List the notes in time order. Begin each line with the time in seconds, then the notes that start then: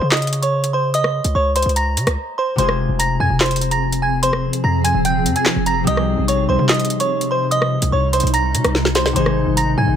0.01 C#3
0.12 D#5 D#6, snare, clap, closed hi-hat
0.17 closed hi-hat
0.22 closed hi-hat
0.27 closed hi-hat
0.33 closed hi-hat
0.42 C#5 C#6, closed hi-hat
0.64 closed hi-hat
0.73 C5 C6
0.94 D#5 D#6, closed hi-hat
1.04 cross-stick
1.24 C#2, closed hi-hat
1.35 C#2 C#5 C#6
1.56 C5 C6, closed hi-hat
1.62 C#2, closed hi-hat
1.69 closed hi-hat
1.76 A#5 A#6, closed hi-hat
1.97 C#3, closed hi-hat
2.07 C#2, cross-stick, closed hi-hat
2.38 C5 C6
2.56 F1 C3 F3 G#3 C4 G#4 C5 C6, closed hi-hat
2.60 F4 G#4
2.69 cross-stick
2.89 F1
2.99 A#5 A#6, closed hi-hat
3.20 F2 G#5 G#6
3.30 F1
3.40 C5 C6, snare, clap, closed hi-hat
3.46 closed hi-hat
3.51 closed hi-hat
3.56 closed hi-hat
3.61 closed hi-hat
3.71 A#5 A#6, closed hi-hat
3.92 closed hi-hat
4.02 G#5 G#6
4.23 C5 C6, closed hi-hat
4.33 cross-stick
4.53 closed hi-hat
4.64 F2 A#5 A#6
4.84 G#5 G#6, closed hi-hat
4.95 D#1
5.05 G5 G6, closed hi-hat
5.26 F2, closed hi-hat
5.36 G#5 G#6, closed hi-hat
5.46 snare, clap
5.56 F1
5.66 A#5 A#6, closed hi-hat
5.84 C2 C3 G3 D#4 D#6, closed hi-hat
5.88 D#4 G4 D#5
5.97 cross-stick
6.18 A#1
6.28 C#5 C#6, closed hi-hat
6.49 C2 C5 C6
6.59 C3
6.69 D#5 D#6, snare, clap, closed hi-hat
6.74 closed hi-hat
6.80 closed hi-hat
6.85 closed hi-hat
6.90 closed hi-hat
7.00 C#5 C#6, closed hi-hat
7.21 closed hi-hat
7.31 C5 C6
7.51 D#5 D#6, closed hi-hat
7.62 cross-stick
7.82 C2, closed hi-hat
7.92 C2 C#5 C#6
8.13 C5 C6, closed hi-hat
8.20 C2, closed hi-hat
8.27 closed hi-hat
8.34 A#5 A#6, closed hi-hat
8.54 C3, closed hi-hat
8.64 C2, cross-stick, closed hi-hat
8.75 snare
8.85 snare
8.95 C5 C6, snare, closed hi-hat
9.06 snare
9.13 G#1 C3 D#3 G#3 C5 C6, closed hi-hat
9.18 D#4 G#4
9.26 cross-stick
9.47 G#1
9.57 A#5 A#6, closed hi-hat
9.78 G#2 G#5 G#6
9.88 G#1